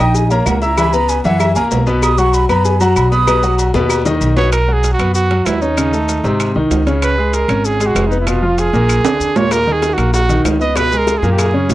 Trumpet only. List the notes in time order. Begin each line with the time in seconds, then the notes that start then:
4.37 C#5
4.52 A#4
4.73 G#4
4.93 F#4
5.14 F#4
5.46 E4
5.62 D#4
7.04 B4
7.34 A#4
7.66 G#4
7.87 F#4
8.07 D#4
8.20 E4
8.28 F4
8.59 G#4
9.37 C#5
9.52 A#4
9.72 G#4
9.94 F#4
10.14 F#4
10.61 D#5
10.77 B4
10.98 A#4
11.18 G#4
11.32 G4
11.39 G#4